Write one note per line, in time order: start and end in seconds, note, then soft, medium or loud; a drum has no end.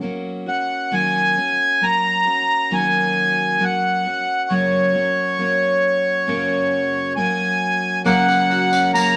0.01 0.47 F#3 medium
0.01 0.47 A#3 medium
0.01 0.46 C#4 medium
0.01 0.45 F#4 medium
0.46 0.91 A#3 soft
0.46 0.91 C#4 soft
0.46 0.92 F#4 soft
0.46 0.94 F#5 medium
0.91 1.37 D#3 medium
0.91 1.37 F#3 medium
0.91 1.37 A#3 medium
0.91 1.36 C#4 medium
0.91 1.35 F#4 medium
0.91 1.85 G#5 medium
1.36 1.80 A#3 soft
1.36 1.81 C#4 soft
1.36 1.81 F#4 soft
1.81 2.26 F#3 soft
1.81 2.27 A#3 soft
1.81 2.25 C#4 medium
1.81 2.24 F#4 medium
1.81 2.75 A#5 loud
2.25 2.70 A#3 soft
2.25 2.71 C#4 soft
2.25 2.71 F#4 soft
2.71 3.60 D#3 medium
2.71 3.59 F#3 medium
2.71 3.60 A#3 medium
2.71 3.60 C#4 medium
2.71 3.61 F#4 medium
2.71 3.64 G#5 medium
3.59 4.05 F#3 soft
3.59 4.05 A#3 medium
3.59 4.04 C#4 medium
3.59 4.03 F#4 medium
3.64 4.54 F#5 medium
4.04 4.49 A#3 soft
4.04 4.50 C#4 soft
4.04 4.50 F#4 soft
4.50 4.95 F#2 medium
4.50 4.95 C#3 medium
4.50 4.95 F#3 medium
4.50 4.94 A#3 medium
4.50 4.93 C#4 medium
4.50 4.92 F#4 medium
4.50 7.13 C#5 medium
4.93 5.37 F#3 soft
4.93 5.38 A#3 soft
4.93 5.38 C#4 soft
4.93 5.39 F#4 soft
5.38 6.26 F#3 soft
5.38 6.27 A#3 soft
5.38 6.27 C#4 soft
5.38 6.28 F#4 medium
6.27 7.17 F#2 medium
6.27 7.17 C#3 medium
6.27 7.15 F#3 medium
6.27 7.16 A#3 medium
6.27 7.17 C#4 medium
6.27 7.17 F#4 medium
7.16 8.04 F#3 medium
7.16 8.04 A#3 medium
7.16 8.05 C#4 medium
7.16 8.05 F#4 medium
7.16 8.02 G#5 medium
8.04 8.94 F#2 medium
8.04 9.17 F#2 medium
8.04 8.95 C#3 medium
8.04 8.92 F#3 medium
8.04 8.93 A#3 medium
8.04 8.27 A#3 medium
8.04 9.17 A#3 medium
8.04 8.95 C#4 medium
8.04 8.94 F#4 medium
8.04 8.91 F#5 loud
8.04 tambourine soft
8.09 9.17 C#3 medium
8.28 8.93 A#3 medium
8.28 tambourine soft
8.50 9.15 F#4 medium
8.50 tambourine soft
8.73 9.17 C#4 medium
8.73 tambourine medium
8.93 9.17 F#3 medium
8.93 9.17 A#3 medium
8.93 9.17 C#4 medium
8.93 9.17 F#4 medium
8.93 9.17 A#5 loud
8.93 tambourine medium